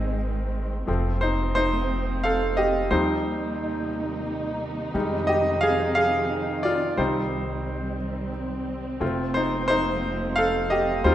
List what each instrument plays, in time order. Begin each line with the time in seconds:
Already playing: upright bass G#1, grand piano D#3 G#3 C4 G#4 D#5, string section D#3 G#3 C4
0.87 upright bass F1, string section F3 A3 C4, grand piano F3 A3 C4
1.21 grand piano D#4 C5
1.55 grand piano D#4 C5
2.24 grand piano A4 F5
2.57 grand piano G4 D#5
2.91 upright bass D#2, string section C3 D#3 G3 A#3 D#4, grand piano F3 G3 C4 D#4 C5
4.94 upright bass F2, string section F3 C4, grand piano G3 G#3 D#4
5.27 grand piano G4 D#5
5.61 grand piano G#4 F5
5.95 grand piano G#4 F5
6.63 grand piano F4 D5
6.97 upright bass C2, grand piano G3 C4 D#4 C5, string section G3 C4
9.00 upright bass F1, string section F3 A3, grand piano A3 C4 F4
9.34 grand piano D#4 C5
9.68 grand piano D#4 C5
10.36 grand piano A4 F5
10.70 grand piano G4 D#5
11.04 upright bass D#2, string section C3 D#3 G3 A#3 D#4, grand piano G3 C4 D#4 F4 C5